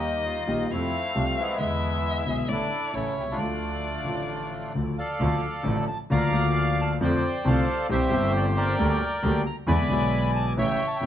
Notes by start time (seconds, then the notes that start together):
Already playing: D#2 D#3 G3 A#3 D#4 G4 D#5
0.26 A#3 F4
0.47 A#1 A#2 D#3 G3 A#3 G4
0.70 F2 C3 F3 A3 C4 E4 F4 F5
1.15 C2 C3 F3 A3 D4 F4
1.39 G#3 B3 E4
1.58 E2 D3 E3 G#3 B3 E5
1.62 E4
2.25 B1 B2 D3 G#3 B3 E4 G#4
2.48 A1 A2 D3 E3 A3 D4 E4 D5
2.53 A4
2.93 A1 A2 C#3 E3 A3 C#4 E4 A4 C#5
3.18 B1 C2 G4
3.27 C2 A3 D4
3.32 C#2 F4
3.37 D2 D3 F3 A3 F4 D5
4.04 A1 A2 D3 F3 A3
4.08 F4
4.74 D2 D3 F3 A3 F4
4.98 A4 D5 F5
5.19 D2 D3 F3 A3 F4
5.63 A1 A2 D3 F3 A3 F4
5.88 A5
6.10 D2 D3 F3 A#3 F4 D5 F5 A#5
6.31 D2 D3 F3 A#3 F4
6.82 A5
7.01 F2 D3 F3 A3 C4 F4 C5 D5 G5
7.45 C2 C3 D3 A3 C4 F4 A4 D5 F5
7.89 C2 C3 E3 G3 C4 G4 C5 E5
8.09 G1 G2 E3 G3 C4 G4
8.37 D5
8.57 A#4 D5 G5
8.78 D2 D3 G3 A#3 G4
9.22 D2 D3 G3 A#3 G4
9.46 A#5
9.67 E2 D3 E3 G#3 B3 E4 D5 G#5 B5
9.89 B1 B2 D3 G#3 B3
9.93 E4
10.35 A5
10.57 A1 A2 C#3 E3 A3 E4 C#5 E5 G5
10.87 A5
10.96 G5
11.00 E1 E2 C#3 E3 A3